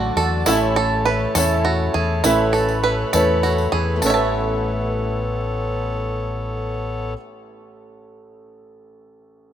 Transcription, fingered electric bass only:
0.16 0.43 E2 loud
0.46 1.25 A1 loud
1.35 1.88 E2 loud
1.95 2.21 E2 loud
2.24 3.03 A1 loud
3.14 3.66 E2 loud
3.73 3.99 E2 loud
4.03 7.14 A1 loud

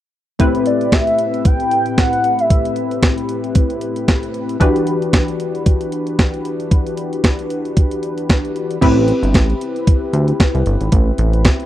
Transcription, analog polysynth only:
0.39 4.57 A2 medium
0.39 4.57 C4 medium
0.39 4.57 E4 medium
0.39 4.57 G4 medium
0.39 4.57 B4 medium
4.60 8.77 E3 medium
4.60 8.78 D4 medium
4.60 8.78 F#4 medium
4.60 8.78 G4 medium
4.60 8.78 B4 medium
8.81 11.66 C4 medium
8.81 11.66 E4 medium
8.81 11.66 G4 medium
8.81 11.66 B4 medium

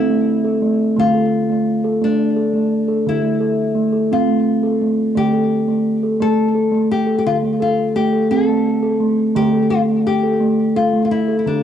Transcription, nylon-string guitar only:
0.00 1.01 E4 medium
0.99 2.06 F4 medium
2.04 3.08 D4 medium
3.08 4.15 E4 medium
4.13 4.87 F4 medium
5.17 6.18 G4 medium
6.22 6.91 A4 medium
6.92 7.17 G4 medium
7.19 7.26 G4 medium
7.27 7.36 F4 medium
7.62 7.95 F4 medium
7.96 8.30 G4 medium
8.31 9.06 A4 medium
9.36 9.70 G4 medium
9.70 9.80 F4 medium
10.07 10.76 G4 medium
10.76 11.04 F4 medium
11.05 11.11 F4 soft
11.11 11.38 E4 medium
11.39 11.46 E4 soft
11.47 11.63 D4 medium

